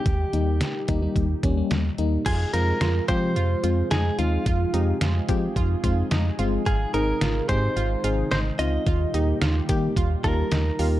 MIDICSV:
0, 0, Header, 1, 7, 480
1, 0, Start_track
1, 0, Key_signature, -4, "minor"
1, 0, Tempo, 550459
1, 51, Time_signature, 4, 2, 24, 8
1, 9591, End_track
2, 0, Start_track
2, 0, Title_t, "Clean electric guitar"
2, 0, Program_c, 0, 27
2, 0, Note_on_c, 0, 67, 78
2, 1455, Note_off_c, 0, 67, 0
2, 1970, Note_on_c, 0, 68, 98
2, 2207, Note_off_c, 0, 68, 0
2, 2210, Note_on_c, 0, 70, 100
2, 2657, Note_off_c, 0, 70, 0
2, 2689, Note_on_c, 0, 72, 109
2, 3407, Note_off_c, 0, 72, 0
2, 3410, Note_on_c, 0, 68, 93
2, 3634, Note_off_c, 0, 68, 0
2, 3650, Note_on_c, 0, 65, 78
2, 4335, Note_off_c, 0, 65, 0
2, 5811, Note_on_c, 0, 68, 87
2, 6047, Note_off_c, 0, 68, 0
2, 6050, Note_on_c, 0, 70, 91
2, 6527, Note_off_c, 0, 70, 0
2, 6531, Note_on_c, 0, 72, 99
2, 7240, Note_off_c, 0, 72, 0
2, 7250, Note_on_c, 0, 72, 98
2, 7315, Note_off_c, 0, 72, 0
2, 7490, Note_on_c, 0, 75, 102
2, 8175, Note_off_c, 0, 75, 0
2, 8931, Note_on_c, 0, 70, 99
2, 9591, Note_off_c, 0, 70, 0
2, 9591, End_track
3, 0, Start_track
3, 0, Title_t, "Synth pluck"
3, 0, Program_c, 1, 84
3, 1970, Note_on_c, 1, 65, 94
3, 2154, Note_off_c, 1, 65, 0
3, 2211, Note_on_c, 1, 63, 78
3, 2395, Note_off_c, 1, 63, 0
3, 2450, Note_on_c, 1, 65, 86
3, 2634, Note_off_c, 1, 65, 0
3, 2690, Note_on_c, 1, 67, 81
3, 2874, Note_off_c, 1, 67, 0
3, 2930, Note_on_c, 1, 65, 91
3, 3115, Note_off_c, 1, 65, 0
3, 3170, Note_on_c, 1, 65, 79
3, 3354, Note_off_c, 1, 65, 0
3, 3410, Note_on_c, 1, 63, 85
3, 3594, Note_off_c, 1, 63, 0
3, 3650, Note_on_c, 1, 65, 79
3, 3834, Note_off_c, 1, 65, 0
3, 3890, Note_on_c, 1, 65, 94
3, 4074, Note_off_c, 1, 65, 0
3, 4130, Note_on_c, 1, 63, 75
3, 4314, Note_off_c, 1, 63, 0
3, 4370, Note_on_c, 1, 65, 85
3, 4554, Note_off_c, 1, 65, 0
3, 4610, Note_on_c, 1, 67, 77
3, 4795, Note_off_c, 1, 67, 0
3, 4851, Note_on_c, 1, 65, 88
3, 5035, Note_off_c, 1, 65, 0
3, 5091, Note_on_c, 1, 65, 78
3, 5275, Note_off_c, 1, 65, 0
3, 5331, Note_on_c, 1, 63, 84
3, 5515, Note_off_c, 1, 63, 0
3, 5570, Note_on_c, 1, 65, 83
3, 5755, Note_off_c, 1, 65, 0
3, 5810, Note_on_c, 1, 65, 92
3, 5994, Note_off_c, 1, 65, 0
3, 6050, Note_on_c, 1, 63, 78
3, 6235, Note_off_c, 1, 63, 0
3, 6290, Note_on_c, 1, 65, 83
3, 6475, Note_off_c, 1, 65, 0
3, 6531, Note_on_c, 1, 67, 81
3, 6715, Note_off_c, 1, 67, 0
3, 6771, Note_on_c, 1, 65, 93
3, 6955, Note_off_c, 1, 65, 0
3, 7011, Note_on_c, 1, 65, 80
3, 7195, Note_off_c, 1, 65, 0
3, 7251, Note_on_c, 1, 63, 86
3, 7435, Note_off_c, 1, 63, 0
3, 7491, Note_on_c, 1, 65, 78
3, 7675, Note_off_c, 1, 65, 0
3, 7731, Note_on_c, 1, 65, 94
3, 7915, Note_off_c, 1, 65, 0
3, 7971, Note_on_c, 1, 63, 80
3, 8155, Note_off_c, 1, 63, 0
3, 8211, Note_on_c, 1, 65, 85
3, 8395, Note_off_c, 1, 65, 0
3, 8450, Note_on_c, 1, 67, 80
3, 8635, Note_off_c, 1, 67, 0
3, 8691, Note_on_c, 1, 65, 88
3, 8875, Note_off_c, 1, 65, 0
3, 8931, Note_on_c, 1, 65, 81
3, 9115, Note_off_c, 1, 65, 0
3, 9171, Note_on_c, 1, 63, 82
3, 9355, Note_off_c, 1, 63, 0
3, 9411, Note_on_c, 1, 65, 79
3, 9591, Note_off_c, 1, 65, 0
3, 9591, End_track
4, 0, Start_track
4, 0, Title_t, "FM electric piano"
4, 0, Program_c, 2, 5
4, 291, Note_on_c, 2, 55, 72
4, 291, Note_on_c, 2, 58, 63
4, 291, Note_on_c, 2, 63, 80
4, 496, Note_off_c, 2, 55, 0
4, 496, Note_off_c, 2, 58, 0
4, 496, Note_off_c, 2, 63, 0
4, 771, Note_on_c, 2, 55, 88
4, 771, Note_on_c, 2, 58, 79
4, 771, Note_on_c, 2, 63, 99
4, 873, Note_off_c, 2, 55, 0
4, 873, Note_off_c, 2, 58, 0
4, 873, Note_off_c, 2, 63, 0
4, 891, Note_on_c, 2, 55, 79
4, 891, Note_on_c, 2, 58, 72
4, 891, Note_on_c, 2, 63, 86
4, 1096, Note_off_c, 2, 55, 0
4, 1096, Note_off_c, 2, 58, 0
4, 1096, Note_off_c, 2, 63, 0
4, 1251, Note_on_c, 2, 55, 87
4, 1251, Note_on_c, 2, 58, 76
4, 1251, Note_on_c, 2, 61, 96
4, 1353, Note_off_c, 2, 55, 0
4, 1353, Note_off_c, 2, 58, 0
4, 1353, Note_off_c, 2, 61, 0
4, 1371, Note_on_c, 2, 55, 73
4, 1371, Note_on_c, 2, 58, 68
4, 1371, Note_on_c, 2, 61, 82
4, 1576, Note_off_c, 2, 55, 0
4, 1576, Note_off_c, 2, 58, 0
4, 1576, Note_off_c, 2, 61, 0
4, 1731, Note_on_c, 2, 55, 87
4, 1731, Note_on_c, 2, 58, 80
4, 1731, Note_on_c, 2, 63, 96
4, 1936, Note_off_c, 2, 55, 0
4, 1936, Note_off_c, 2, 58, 0
4, 1936, Note_off_c, 2, 63, 0
4, 2211, Note_on_c, 2, 56, 69
4, 2211, Note_on_c, 2, 60, 67
4, 2211, Note_on_c, 2, 65, 76
4, 2416, Note_off_c, 2, 56, 0
4, 2416, Note_off_c, 2, 60, 0
4, 2416, Note_off_c, 2, 65, 0
4, 2691, Note_on_c, 2, 56, 75
4, 2691, Note_on_c, 2, 60, 69
4, 2691, Note_on_c, 2, 65, 84
4, 2896, Note_off_c, 2, 56, 0
4, 2896, Note_off_c, 2, 60, 0
4, 2896, Note_off_c, 2, 65, 0
4, 3171, Note_on_c, 2, 56, 72
4, 3171, Note_on_c, 2, 60, 69
4, 3171, Note_on_c, 2, 65, 78
4, 3376, Note_off_c, 2, 56, 0
4, 3376, Note_off_c, 2, 60, 0
4, 3376, Note_off_c, 2, 65, 0
4, 3651, Note_on_c, 2, 56, 73
4, 3651, Note_on_c, 2, 60, 68
4, 3651, Note_on_c, 2, 63, 81
4, 3856, Note_off_c, 2, 56, 0
4, 3856, Note_off_c, 2, 60, 0
4, 3856, Note_off_c, 2, 63, 0
4, 4130, Note_on_c, 2, 60, 68
4, 4131, Note_on_c, 2, 56, 73
4, 4131, Note_on_c, 2, 67, 81
4, 4335, Note_off_c, 2, 60, 0
4, 4336, Note_off_c, 2, 56, 0
4, 4336, Note_off_c, 2, 67, 0
4, 4610, Note_on_c, 2, 56, 92
4, 4610, Note_on_c, 2, 60, 83
4, 4610, Note_on_c, 2, 65, 97
4, 4815, Note_off_c, 2, 56, 0
4, 4815, Note_off_c, 2, 60, 0
4, 4815, Note_off_c, 2, 65, 0
4, 5091, Note_on_c, 2, 56, 87
4, 5091, Note_on_c, 2, 60, 80
4, 5091, Note_on_c, 2, 65, 96
4, 5296, Note_off_c, 2, 56, 0
4, 5296, Note_off_c, 2, 60, 0
4, 5296, Note_off_c, 2, 65, 0
4, 5571, Note_on_c, 2, 56, 88
4, 5571, Note_on_c, 2, 60, 84
4, 5571, Note_on_c, 2, 65, 98
4, 5776, Note_off_c, 2, 56, 0
4, 5776, Note_off_c, 2, 60, 0
4, 5776, Note_off_c, 2, 65, 0
4, 6051, Note_on_c, 2, 60, 72
4, 6051, Note_on_c, 2, 63, 65
4, 6051, Note_on_c, 2, 68, 81
4, 6256, Note_off_c, 2, 60, 0
4, 6256, Note_off_c, 2, 63, 0
4, 6256, Note_off_c, 2, 68, 0
4, 6531, Note_on_c, 2, 60, 76
4, 6531, Note_on_c, 2, 63, 68
4, 6532, Note_on_c, 2, 68, 84
4, 6736, Note_off_c, 2, 60, 0
4, 6736, Note_off_c, 2, 63, 0
4, 6736, Note_off_c, 2, 68, 0
4, 7011, Note_on_c, 2, 60, 71
4, 7011, Note_on_c, 2, 63, 67
4, 7011, Note_on_c, 2, 68, 82
4, 7216, Note_off_c, 2, 60, 0
4, 7216, Note_off_c, 2, 63, 0
4, 7216, Note_off_c, 2, 68, 0
4, 7491, Note_on_c, 2, 60, 74
4, 7491, Note_on_c, 2, 63, 69
4, 7491, Note_on_c, 2, 65, 81
4, 7696, Note_off_c, 2, 60, 0
4, 7696, Note_off_c, 2, 63, 0
4, 7696, Note_off_c, 2, 65, 0
4, 7971, Note_on_c, 2, 58, 73
4, 7971, Note_on_c, 2, 63, 66
4, 7971, Note_on_c, 2, 67, 81
4, 8176, Note_off_c, 2, 58, 0
4, 8176, Note_off_c, 2, 63, 0
4, 8176, Note_off_c, 2, 67, 0
4, 8451, Note_on_c, 2, 58, 92
4, 8451, Note_on_c, 2, 63, 83
4, 8451, Note_on_c, 2, 67, 99
4, 8656, Note_off_c, 2, 58, 0
4, 8656, Note_off_c, 2, 63, 0
4, 8656, Note_off_c, 2, 67, 0
4, 8930, Note_on_c, 2, 58, 72
4, 8930, Note_on_c, 2, 63, 68
4, 8930, Note_on_c, 2, 67, 78
4, 9135, Note_off_c, 2, 63, 0
4, 9136, Note_off_c, 2, 58, 0
4, 9136, Note_off_c, 2, 67, 0
4, 9411, Note_on_c, 2, 58, 73
4, 9411, Note_on_c, 2, 63, 70
4, 9411, Note_on_c, 2, 67, 83
4, 9591, Note_off_c, 2, 58, 0
4, 9591, Note_off_c, 2, 63, 0
4, 9591, Note_off_c, 2, 67, 0
4, 9591, End_track
5, 0, Start_track
5, 0, Title_t, "Analog synth pad"
5, 0, Program_c, 3, 89
5, 0, Note_on_c, 3, 51, 72
5, 50, Note_on_c, 3, 46, 79
5, 50, Note_on_c, 3, 55, 74
5, 50, Note_on_c, 3, 63, 73
5, 50, Note_on_c, 3, 67, 88
5, 1936, Note_off_c, 3, 51, 0
5, 1951, Note_off_c, 3, 46, 0
5, 1951, Note_off_c, 3, 55, 0
5, 1951, Note_off_c, 3, 63, 0
5, 1951, Note_off_c, 3, 67, 0
5, 1970, Note_on_c, 3, 48, 78
5, 1970, Note_on_c, 3, 53, 74
5, 1970, Note_on_c, 3, 56, 75
5, 1970, Note_on_c, 3, 65, 74
5, 1970, Note_on_c, 3, 68, 90
5, 3871, Note_off_c, 3, 65, 0
5, 3890, Note_on_c, 3, 63, 74
5, 5775, Note_off_c, 3, 53, 0
5, 5811, Note_on_c, 3, 51, 74
5, 7695, Note_off_c, 3, 48, 0
5, 7696, Note_off_c, 3, 56, 0
5, 7696, Note_off_c, 3, 68, 0
5, 7731, Note_on_c, 3, 46, 82
5, 7731, Note_on_c, 3, 55, 74
5, 7731, Note_on_c, 3, 67, 88
5, 9591, Note_off_c, 3, 46, 0
5, 9591, Note_off_c, 3, 51, 0
5, 9591, Note_off_c, 3, 55, 0
5, 9591, Note_off_c, 3, 63, 0
5, 9591, Note_off_c, 3, 67, 0
5, 9591, End_track
6, 0, Start_track
6, 0, Title_t, "FM bass"
6, 0, Program_c, 4, 39
6, 51, Note_on_c, 4, 39, 104
6, 219, Note_off_c, 4, 39, 0
6, 291, Note_on_c, 4, 39, 101
6, 543, Note_off_c, 4, 39, 0
6, 773, Note_on_c, 4, 39, 104
6, 940, Note_off_c, 4, 39, 0
6, 1009, Note_on_c, 4, 39, 103
6, 1178, Note_off_c, 4, 39, 0
6, 1249, Note_on_c, 4, 39, 98
6, 1418, Note_off_c, 4, 39, 0
6, 1491, Note_on_c, 4, 39, 94
6, 1659, Note_off_c, 4, 39, 0
6, 1731, Note_on_c, 4, 39, 91
6, 1899, Note_off_c, 4, 39, 0
6, 1971, Note_on_c, 4, 41, 105
6, 2138, Note_off_c, 4, 41, 0
6, 2211, Note_on_c, 4, 41, 96
6, 2379, Note_off_c, 4, 41, 0
6, 2451, Note_on_c, 4, 41, 95
6, 2619, Note_off_c, 4, 41, 0
6, 2693, Note_on_c, 4, 53, 107
6, 2931, Note_on_c, 4, 41, 103
6, 2944, Note_off_c, 4, 53, 0
6, 3099, Note_off_c, 4, 41, 0
6, 3171, Note_on_c, 4, 41, 100
6, 3339, Note_off_c, 4, 41, 0
6, 3411, Note_on_c, 4, 41, 90
6, 3579, Note_off_c, 4, 41, 0
6, 3651, Note_on_c, 4, 39, 91
6, 3819, Note_off_c, 4, 39, 0
6, 3891, Note_on_c, 4, 41, 105
6, 4059, Note_off_c, 4, 41, 0
6, 4131, Note_on_c, 4, 41, 101
6, 4299, Note_off_c, 4, 41, 0
6, 4371, Note_on_c, 4, 41, 103
6, 4539, Note_off_c, 4, 41, 0
6, 4613, Note_on_c, 4, 53, 98
6, 4780, Note_off_c, 4, 53, 0
6, 4849, Note_on_c, 4, 41, 106
6, 5018, Note_off_c, 4, 41, 0
6, 5090, Note_on_c, 4, 41, 105
6, 5258, Note_off_c, 4, 41, 0
6, 5331, Note_on_c, 4, 41, 98
6, 5499, Note_off_c, 4, 41, 0
6, 5571, Note_on_c, 4, 31, 99
6, 5739, Note_off_c, 4, 31, 0
6, 5811, Note_on_c, 4, 32, 109
6, 5979, Note_off_c, 4, 32, 0
6, 6051, Note_on_c, 4, 32, 102
6, 6219, Note_off_c, 4, 32, 0
6, 6292, Note_on_c, 4, 32, 96
6, 6459, Note_off_c, 4, 32, 0
6, 6534, Note_on_c, 4, 44, 104
6, 6701, Note_off_c, 4, 44, 0
6, 6771, Note_on_c, 4, 32, 106
6, 6939, Note_off_c, 4, 32, 0
6, 7011, Note_on_c, 4, 32, 97
6, 7179, Note_off_c, 4, 32, 0
6, 7251, Note_on_c, 4, 32, 99
6, 7419, Note_off_c, 4, 32, 0
6, 7491, Note_on_c, 4, 37, 94
6, 7659, Note_off_c, 4, 37, 0
6, 7731, Note_on_c, 4, 39, 112
6, 7899, Note_off_c, 4, 39, 0
6, 7970, Note_on_c, 4, 39, 101
6, 8138, Note_off_c, 4, 39, 0
6, 8211, Note_on_c, 4, 39, 101
6, 8379, Note_off_c, 4, 39, 0
6, 8453, Note_on_c, 4, 51, 103
6, 8620, Note_off_c, 4, 51, 0
6, 8689, Note_on_c, 4, 39, 108
6, 8858, Note_off_c, 4, 39, 0
6, 8930, Note_on_c, 4, 39, 103
6, 9098, Note_off_c, 4, 39, 0
6, 9171, Note_on_c, 4, 39, 93
6, 9339, Note_off_c, 4, 39, 0
6, 9411, Note_on_c, 4, 39, 95
6, 9579, Note_off_c, 4, 39, 0
6, 9591, End_track
7, 0, Start_track
7, 0, Title_t, "Drums"
7, 50, Note_on_c, 9, 42, 65
7, 51, Note_on_c, 9, 36, 113
7, 137, Note_off_c, 9, 42, 0
7, 138, Note_off_c, 9, 36, 0
7, 291, Note_on_c, 9, 42, 75
7, 378, Note_off_c, 9, 42, 0
7, 529, Note_on_c, 9, 38, 113
7, 531, Note_on_c, 9, 42, 76
7, 617, Note_off_c, 9, 38, 0
7, 618, Note_off_c, 9, 42, 0
7, 768, Note_on_c, 9, 42, 72
7, 773, Note_on_c, 9, 36, 86
7, 856, Note_off_c, 9, 42, 0
7, 860, Note_off_c, 9, 36, 0
7, 1009, Note_on_c, 9, 36, 91
7, 1012, Note_on_c, 9, 42, 75
7, 1096, Note_off_c, 9, 36, 0
7, 1100, Note_off_c, 9, 42, 0
7, 1250, Note_on_c, 9, 36, 86
7, 1251, Note_on_c, 9, 42, 64
7, 1337, Note_off_c, 9, 36, 0
7, 1338, Note_off_c, 9, 42, 0
7, 1489, Note_on_c, 9, 42, 63
7, 1491, Note_on_c, 9, 38, 109
7, 1576, Note_off_c, 9, 42, 0
7, 1578, Note_off_c, 9, 38, 0
7, 1730, Note_on_c, 9, 42, 73
7, 1817, Note_off_c, 9, 42, 0
7, 1970, Note_on_c, 9, 42, 68
7, 1970, Note_on_c, 9, 49, 92
7, 1971, Note_on_c, 9, 36, 109
7, 2057, Note_off_c, 9, 42, 0
7, 2057, Note_off_c, 9, 49, 0
7, 2058, Note_off_c, 9, 36, 0
7, 2211, Note_on_c, 9, 42, 75
7, 2298, Note_off_c, 9, 42, 0
7, 2449, Note_on_c, 9, 38, 111
7, 2451, Note_on_c, 9, 42, 75
7, 2537, Note_off_c, 9, 38, 0
7, 2538, Note_off_c, 9, 42, 0
7, 2689, Note_on_c, 9, 42, 71
7, 2693, Note_on_c, 9, 36, 88
7, 2776, Note_off_c, 9, 42, 0
7, 2780, Note_off_c, 9, 36, 0
7, 2933, Note_on_c, 9, 42, 76
7, 3020, Note_off_c, 9, 42, 0
7, 3171, Note_on_c, 9, 42, 65
7, 3258, Note_off_c, 9, 42, 0
7, 3409, Note_on_c, 9, 42, 61
7, 3411, Note_on_c, 9, 38, 111
7, 3496, Note_off_c, 9, 42, 0
7, 3498, Note_off_c, 9, 38, 0
7, 3650, Note_on_c, 9, 42, 73
7, 3738, Note_off_c, 9, 42, 0
7, 3890, Note_on_c, 9, 42, 68
7, 3891, Note_on_c, 9, 36, 113
7, 3978, Note_off_c, 9, 36, 0
7, 3978, Note_off_c, 9, 42, 0
7, 4132, Note_on_c, 9, 42, 76
7, 4219, Note_off_c, 9, 42, 0
7, 4370, Note_on_c, 9, 38, 113
7, 4372, Note_on_c, 9, 42, 77
7, 4457, Note_off_c, 9, 38, 0
7, 4459, Note_off_c, 9, 42, 0
7, 4609, Note_on_c, 9, 42, 71
7, 4613, Note_on_c, 9, 36, 88
7, 4696, Note_off_c, 9, 42, 0
7, 4700, Note_off_c, 9, 36, 0
7, 4849, Note_on_c, 9, 36, 92
7, 4853, Note_on_c, 9, 42, 77
7, 4937, Note_off_c, 9, 36, 0
7, 4940, Note_off_c, 9, 42, 0
7, 5090, Note_on_c, 9, 36, 84
7, 5091, Note_on_c, 9, 42, 62
7, 5177, Note_off_c, 9, 36, 0
7, 5178, Note_off_c, 9, 42, 0
7, 5329, Note_on_c, 9, 42, 61
7, 5331, Note_on_c, 9, 38, 111
7, 5416, Note_off_c, 9, 42, 0
7, 5418, Note_off_c, 9, 38, 0
7, 5571, Note_on_c, 9, 42, 75
7, 5658, Note_off_c, 9, 42, 0
7, 5810, Note_on_c, 9, 42, 68
7, 5811, Note_on_c, 9, 36, 117
7, 5897, Note_off_c, 9, 42, 0
7, 5898, Note_off_c, 9, 36, 0
7, 6052, Note_on_c, 9, 42, 77
7, 6139, Note_off_c, 9, 42, 0
7, 6290, Note_on_c, 9, 38, 117
7, 6291, Note_on_c, 9, 42, 77
7, 6377, Note_off_c, 9, 38, 0
7, 6379, Note_off_c, 9, 42, 0
7, 6529, Note_on_c, 9, 42, 70
7, 6533, Note_on_c, 9, 36, 85
7, 6617, Note_off_c, 9, 42, 0
7, 6621, Note_off_c, 9, 36, 0
7, 6774, Note_on_c, 9, 42, 74
7, 6861, Note_off_c, 9, 42, 0
7, 7011, Note_on_c, 9, 42, 65
7, 7099, Note_off_c, 9, 42, 0
7, 7250, Note_on_c, 9, 42, 63
7, 7252, Note_on_c, 9, 38, 113
7, 7337, Note_off_c, 9, 42, 0
7, 7339, Note_off_c, 9, 38, 0
7, 7491, Note_on_c, 9, 42, 73
7, 7578, Note_off_c, 9, 42, 0
7, 7730, Note_on_c, 9, 42, 68
7, 7731, Note_on_c, 9, 36, 116
7, 7817, Note_off_c, 9, 42, 0
7, 7818, Note_off_c, 9, 36, 0
7, 7971, Note_on_c, 9, 42, 76
7, 8059, Note_off_c, 9, 42, 0
7, 8210, Note_on_c, 9, 38, 113
7, 8211, Note_on_c, 9, 42, 78
7, 8297, Note_off_c, 9, 38, 0
7, 8299, Note_off_c, 9, 42, 0
7, 8449, Note_on_c, 9, 42, 72
7, 8453, Note_on_c, 9, 36, 88
7, 8536, Note_off_c, 9, 42, 0
7, 8540, Note_off_c, 9, 36, 0
7, 8689, Note_on_c, 9, 36, 90
7, 8693, Note_on_c, 9, 42, 74
7, 8777, Note_off_c, 9, 36, 0
7, 8780, Note_off_c, 9, 42, 0
7, 8930, Note_on_c, 9, 36, 86
7, 8931, Note_on_c, 9, 42, 63
7, 9017, Note_off_c, 9, 36, 0
7, 9018, Note_off_c, 9, 42, 0
7, 9169, Note_on_c, 9, 42, 63
7, 9171, Note_on_c, 9, 38, 109
7, 9256, Note_off_c, 9, 42, 0
7, 9258, Note_off_c, 9, 38, 0
7, 9410, Note_on_c, 9, 46, 73
7, 9497, Note_off_c, 9, 46, 0
7, 9591, End_track
0, 0, End_of_file